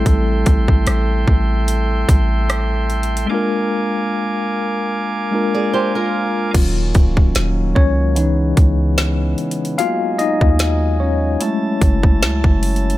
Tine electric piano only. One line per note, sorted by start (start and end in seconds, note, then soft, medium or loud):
0.00 2.83 G3 medium
0.00 2.84 A3 medium
0.00 2.85 C4 medium
0.00 2.86 E4 medium
0.00 2.87 A4 medium
3.26 5.27 G#3 medium
3.26 5.28 A#3 medium
3.26 5.29 D4 medium
3.32 5.30 F4 medium
3.32 5.31 A#4 medium
5.31 6.54 G#3 medium
5.31 6.54 A#3 medium
5.31 6.55 D4 soft
5.31 6.54 F4 medium
5.35 6.56 A#4 medium
6.54 8.13 F#3 medium
6.54 7.76 C#4 soft
6.54 8.13 F4 medium
7.75 9.75 C#4 medium
7.75 9.85 C#5 medium
8.17 9.34 E3 medium
8.17 9.34 B3 medium
8.17 9.35 D#4 medium
9.78 11.37 A#3 soft
9.78 11.37 B3 medium
9.78 10.17 F4 medium
9.78 11.37 F#4 medium
9.78 10.20 F5 loud
10.19 10.97 D#4 medium
10.19 11.02 D#5 loud
11.00 12.59 C#4 medium
11.00 12.58 C#5 medium
11.41 12.59 G#3 medium
11.41 12.59 A3 medium
11.41 12.59 E4 medium